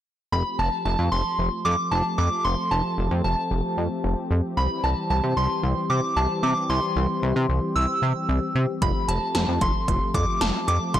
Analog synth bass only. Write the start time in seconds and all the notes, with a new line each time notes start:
0.32 F1
0.59 F1
0.86 F1
0.99 F2
1.12 F1
1.39 F1
1.65 F2
1.92 F1
2.18 F2
2.45 F1
2.71 F1
2.98 F1
3.11 F2
3.24 F1
3.51 F1
3.78 F2
4.04 F1
4.31 F2
4.57 C2
4.84 C2
5.10 C2
5.23 C3
5.37 C2
5.63 C2
5.90 C3
6.16 C2
6.43 C3
6.69 C2
6.96 C2
7.23 C2
7.36 C3
7.49 C2
7.76 C2
8.02 C3
8.29 C2
8.55 C3
8.82 F1
9.08 F1
9.35 F1
9.48 F2
9.61 F1
9.88 F1
10.14 F2
10.41 F1
10.68 F2
10.94 F1